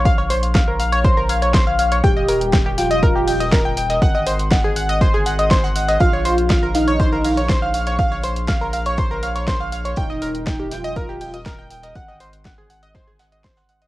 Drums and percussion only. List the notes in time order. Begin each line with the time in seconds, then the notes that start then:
0.05 kick, closed hi-hat
0.18 closed hi-hat
0.30 closed hi-hat, open hi-hat
0.43 closed hi-hat
0.55 kick, snare, closed hi-hat
0.80 closed hi-hat, open hi-hat
0.93 closed hi-hat
1.04 kick, closed hi-hat
1.29 closed hi-hat, open hi-hat
1.42 closed hi-hat
1.53 kick, snare, closed hi-hat
1.79 closed hi-hat, open hi-hat
1.92 closed hi-hat
2.04 kick, closed hi-hat
2.28 closed hi-hat, open hi-hat
2.41 closed hi-hat
2.53 kick, snare, closed hi-hat
2.78 snare, closed hi-hat, open hi-hat
2.91 closed hi-hat
3.02 kick, closed hi-hat
3.16 closed hi-hat
3.28 open hi-hat
3.41 closed hi-hat
3.52 kick, snare, closed hi-hat
3.77 closed hi-hat, open hi-hat
3.90 snare, closed hi-hat
4.02 kick, closed hi-hat
4.15 closed hi-hat
4.27 closed hi-hat, open hi-hat
4.39 closed hi-hat
4.52 kick, snare, closed hi-hat
4.76 closed hi-hat, open hi-hat
4.89 closed hi-hat
5.01 kick, closed hi-hat
5.26 closed hi-hat, open hi-hat
5.39 closed hi-hat
5.51 kick, snare, closed hi-hat
5.64 closed hi-hat
5.76 open hi-hat
5.88 closed hi-hat
6.00 kick, closed hi-hat
6.25 closed hi-hat, open hi-hat
6.38 closed hi-hat
6.49 kick, snare, closed hi-hat
6.74 snare, closed hi-hat, open hi-hat
6.88 closed hi-hat
6.99 kick, closed hi-hat
7.13 closed hi-hat
7.24 open hi-hat
7.37 closed hi-hat
7.49 kick, snare, closed hi-hat
7.74 closed hi-hat, open hi-hat
7.87 snare, closed hi-hat
7.99 kick, closed hi-hat
8.11 closed hi-hat
8.23 closed hi-hat, open hi-hat
8.36 closed hi-hat
8.48 kick, snare, closed hi-hat
8.73 closed hi-hat, open hi-hat
8.86 closed hi-hat
8.97 kick, closed hi-hat
9.23 closed hi-hat, open hi-hat
9.35 closed hi-hat
9.48 kick, snare, closed hi-hat
9.72 closed hi-hat, open hi-hat
9.85 closed hi-hat
9.96 kick, closed hi-hat
10.22 closed hi-hat, open hi-hat
10.35 closed hi-hat
10.46 kick, snare, closed hi-hat
10.71 snare, closed hi-hat, open hi-hat
10.84 closed hi-hat
10.96 kick, closed hi-hat
11.09 closed hi-hat
11.21 open hi-hat
11.34 closed hi-hat
11.46 kick, snare, closed hi-hat
11.70 closed hi-hat, open hi-hat
11.83 snare, closed hi-hat
11.95 kick, closed hi-hat
12.08 closed hi-hat
12.20 closed hi-hat, open hi-hat
12.33 closed hi-hat
12.45 kick, snare, closed hi-hat
12.70 closed hi-hat, open hi-hat
12.83 closed hi-hat
12.95 kick, snare, closed hi-hat
13.19 snare, closed hi-hat, open hi-hat
13.32 closed hi-hat
13.44 kick, snare, closed hi-hat
13.56 snare, closed hi-hat
13.69 open hi-hat
13.82 closed hi-hat